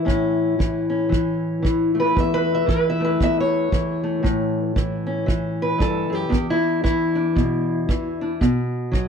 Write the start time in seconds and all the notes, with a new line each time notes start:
Already playing: E3 E4 E5
0.05 A2 C#4, kick
0.59 E3, kick
0.90 C#4
1.09 E3, kick
1.63 E3, kick
1.95 A3
2.00 B4
2.15 E2, kick
2.20 E5
2.34 B4
2.55 E5
2.67 E3 B4, kick
2.90 E5
3.00 A3
3.05 B4
3.21 E2 E5, kick
3.40 C#5
3.72 E3, kick
4.04 A3
4.23 A2, kick
4.76 E3, kick
5.07 C#4
5.26 E3, kick
5.62 B4
5.78 G2 A4, kick
6.10 F#2
6.15 G4
6.29 E2 D4, kick
6.50 E4
6.83 E3 E4, kick
7.15 D4
7.36 B2, kick
7.89 E3, kick
8.21 D4
8.41 B2, kick
8.92 F#3, kick